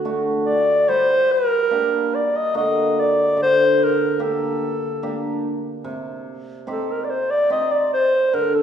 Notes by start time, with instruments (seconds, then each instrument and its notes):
Already playing: hammered dulcimer D3, clarinet F#4
0.05 hammered dulcimer A3 D4 F#4
0.46 clarinet D5
0.88 hammered dulcimer G3, clarinet C5
1.32 clarinet A#4
1.71 hammered dulcimer A#3 D4 G4
2.15 clarinet D5
2.37 clarinet D#5
2.54 hammered dulcimer D3 A#3 F#4, clarinet D#5
3.00 clarinet D5
3.37 hammered dulcimer D3
3.42 clarinet C5
3.84 clarinet A#4
4.19 hammered dulcimer A#3 D4 G4
4.23 clarinet A4
5.03 hammered dulcimer A#3 D4 G4
5.84 hammered dulcimer C3
6.67 hammered dulcimer C4 D#4 G4, clarinet A4
6.91 clarinet A#4
7.04 clarinet D5
7.10 clarinet C5
7.31 clarinet D5
7.50 hammered dulcimer C4 D#4 G4, clarinet D#5
7.72 clarinet D5
7.94 clarinet C5
8.33 hammered dulcimer D3, clarinet A#4
8.54 clarinet A4